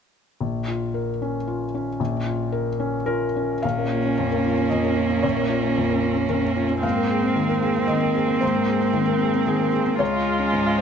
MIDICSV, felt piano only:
0, 0, Header, 1, 2, 480
1, 0, Start_track
1, 0, Key_signature, -5, "minor"
1, 0, Tempo, 528634
1, 372, Time_signature, 3, 2, 24, 8
1, 2288, Tempo, 547445
1, 4208, Tempo, 529101
1, 9745, End_track
2, 0, Start_track
2, 0, Title_t, "Felt piano"
2, 0, Program_c, 0, 0
2, 368, Note_on_c, 0, 34, 33
2, 560, Control_c, 0, 64, 127
2, 618, Note_on_c, 0, 65, 24
2, 855, Note_on_c, 0, 70, 26
2, 1000, Note_off_c, 0, 65, 0
2, 1106, Note_on_c, 0, 61, 30
2, 1238, Note_off_c, 0, 70, 0
2, 1339, Note_on_c, 0, 65, 31
2, 1483, Note_off_c, 0, 61, 0
2, 1585, Note_on_c, 0, 61, 31
2, 1717, Note_off_c, 0, 65, 0
2, 1771, Note_off_c, 0, 34, 0
2, 1816, Note_on_c, 0, 34, 42
2, 1827, Control_c, 0, 64, 0
2, 1958, Note_off_c, 0, 61, 0
2, 1981, Control_c, 0, 64, 127
2, 2056, Note_on_c, 0, 65, 32
2, 2291, Note_on_c, 0, 70, 36
2, 2434, Note_off_c, 0, 65, 0
2, 2531, Note_on_c, 0, 61, 40
2, 2671, Note_off_c, 0, 70, 0
2, 2762, Note_on_c, 0, 70, 61
2, 2770, Note_on_c, 0, 65, 38
2, 2918, Note_off_c, 0, 61, 0
2, 3029, Note_on_c, 0, 61, 31
2, 3169, Note_off_c, 0, 65, 0
2, 3228, Note_off_c, 0, 70, 0
2, 3234, Note_off_c, 0, 34, 0
2, 3257, Note_on_c, 0, 77, 55
2, 3271, Note_off_c, 0, 61, 0
2, 3275, Note_on_c, 0, 34, 40
2, 3282, Control_c, 0, 64, 0
2, 3395, Note_on_c, 0, 70, 29
2, 3445, Control_c, 0, 64, 127
2, 3513, Note_on_c, 0, 65, 27
2, 3581, Note_off_c, 0, 70, 0
2, 3634, Note_on_c, 0, 61, 29
2, 3698, Note_off_c, 0, 65, 0
2, 3749, Note_on_c, 0, 41, 31
2, 3817, Note_off_c, 0, 61, 0
2, 3863, Note_on_c, 0, 70, 34
2, 3932, Note_off_c, 0, 41, 0
2, 3979, Note_on_c, 0, 65, 35
2, 4047, Note_off_c, 0, 70, 0
2, 4094, Note_on_c, 0, 61, 31
2, 4164, Note_off_c, 0, 65, 0
2, 4169, Note_off_c, 0, 77, 0
2, 4196, Note_on_c, 0, 75, 52
2, 4213, Note_on_c, 0, 41, 30
2, 4282, Note_off_c, 0, 61, 0
2, 4329, Note_on_c, 0, 70, 31
2, 4403, Note_off_c, 0, 41, 0
2, 4447, Note_on_c, 0, 65, 32
2, 4520, Note_off_c, 0, 70, 0
2, 4569, Note_on_c, 0, 61, 31
2, 4639, Note_off_c, 0, 65, 0
2, 4647, Note_off_c, 0, 75, 0
2, 4656, Note_off_c, 0, 34, 0
2, 4676, Note_on_c, 0, 73, 54
2, 4686, Note_on_c, 0, 34, 40
2, 4704, Control_c, 0, 64, 0
2, 4759, Note_off_c, 0, 61, 0
2, 4803, Note_on_c, 0, 70, 33
2, 4853, Control_c, 0, 64, 127
2, 4920, Note_on_c, 0, 65, 29
2, 4994, Note_off_c, 0, 70, 0
2, 5043, Note_on_c, 0, 61, 31
2, 5111, Note_off_c, 0, 65, 0
2, 5173, Note_on_c, 0, 41, 34
2, 5232, Note_off_c, 0, 61, 0
2, 5291, Note_on_c, 0, 70, 30
2, 5357, Note_off_c, 0, 41, 0
2, 5407, Note_on_c, 0, 65, 34
2, 5476, Note_off_c, 0, 70, 0
2, 5527, Note_on_c, 0, 61, 30
2, 5596, Note_off_c, 0, 65, 0
2, 5599, Note_off_c, 0, 73, 0
2, 5643, Note_on_c, 0, 41, 28
2, 5648, Note_on_c, 0, 70, 51
2, 5718, Note_off_c, 0, 61, 0
2, 5760, Note_off_c, 0, 70, 0
2, 5773, Note_on_c, 0, 70, 31
2, 5840, Note_off_c, 0, 41, 0
2, 5892, Note_on_c, 0, 65, 33
2, 5969, Note_off_c, 0, 70, 0
2, 6016, Note_on_c, 0, 61, 33
2, 6090, Note_off_c, 0, 65, 0
2, 6100, Note_off_c, 0, 34, 0
2, 6131, Note_on_c, 0, 77, 59
2, 6134, Note_on_c, 0, 44, 40
2, 6138, Note_off_c, 0, 61, 0
2, 6153, Control_c, 0, 64, 0
2, 6258, Note_on_c, 0, 70, 31
2, 6294, Control_c, 0, 64, 127
2, 6375, Note_on_c, 0, 68, 33
2, 6450, Note_off_c, 0, 70, 0
2, 6495, Note_on_c, 0, 60, 34
2, 6568, Note_off_c, 0, 68, 0
2, 6608, Note_on_c, 0, 51, 29
2, 6687, Note_off_c, 0, 60, 0
2, 6728, Note_on_c, 0, 70, 35
2, 6804, Note_off_c, 0, 51, 0
2, 6851, Note_on_c, 0, 68, 38
2, 6924, Note_off_c, 0, 70, 0
2, 6975, Note_on_c, 0, 60, 32
2, 7044, Note_off_c, 0, 68, 0
2, 7055, Note_off_c, 0, 77, 0
2, 7078, Note_on_c, 0, 75, 48
2, 7094, Note_on_c, 0, 51, 33
2, 7165, Note_off_c, 0, 60, 0
2, 7211, Note_on_c, 0, 70, 33
2, 7285, Note_off_c, 0, 51, 0
2, 7326, Note_on_c, 0, 68, 33
2, 7403, Note_off_c, 0, 70, 0
2, 7449, Note_on_c, 0, 60, 37
2, 7522, Note_off_c, 0, 68, 0
2, 7531, Note_off_c, 0, 75, 0
2, 7536, Note_off_c, 0, 44, 0
2, 7561, Note_on_c, 0, 72, 63
2, 7576, Note_on_c, 0, 44, 48
2, 7591, Control_c, 0, 64, 0
2, 7644, Note_off_c, 0, 60, 0
2, 7695, Note_on_c, 0, 70, 35
2, 7754, Control_c, 0, 64, 127
2, 7811, Note_on_c, 0, 68, 34
2, 7886, Note_off_c, 0, 70, 0
2, 7927, Note_on_c, 0, 60, 36
2, 8004, Note_off_c, 0, 68, 0
2, 8043, Note_on_c, 0, 51, 32
2, 8122, Note_off_c, 0, 60, 0
2, 8170, Note_on_c, 0, 70, 41
2, 8239, Note_off_c, 0, 51, 0
2, 8294, Note_on_c, 0, 68, 37
2, 8362, Note_off_c, 0, 70, 0
2, 8413, Note_on_c, 0, 60, 32
2, 8484, Note_off_c, 0, 68, 0
2, 8488, Note_off_c, 0, 72, 0
2, 8526, Note_on_c, 0, 68, 54
2, 8531, Note_on_c, 0, 51, 33
2, 8603, Note_off_c, 0, 60, 0
2, 8642, Note_on_c, 0, 70, 37
2, 8721, Note_off_c, 0, 51, 0
2, 8748, Note_off_c, 0, 68, 0
2, 8761, Note_on_c, 0, 68, 41
2, 8836, Note_off_c, 0, 70, 0
2, 8885, Note_on_c, 0, 60, 34
2, 8955, Note_off_c, 0, 68, 0
2, 8972, Note_off_c, 0, 44, 0
2, 8997, Note_on_c, 0, 73, 58
2, 9006, Note_off_c, 0, 60, 0
2, 9007, Note_on_c, 0, 37, 44
2, 9025, Control_c, 0, 64, 0
2, 9125, Note_on_c, 0, 77, 38
2, 9165, Control_c, 0, 64, 127
2, 9241, Note_on_c, 0, 68, 34
2, 9316, Note_off_c, 0, 77, 0
2, 9366, Note_on_c, 0, 61, 37
2, 9435, Note_off_c, 0, 68, 0
2, 9489, Note_on_c, 0, 44, 38
2, 9558, Note_off_c, 0, 61, 0
2, 9611, Note_on_c, 0, 77, 41
2, 9680, Note_off_c, 0, 44, 0
2, 9686, Note_off_c, 0, 73, 0
2, 9745, Note_off_c, 0, 37, 0
2, 9745, Note_off_c, 0, 77, 0
2, 9745, End_track
0, 0, End_of_file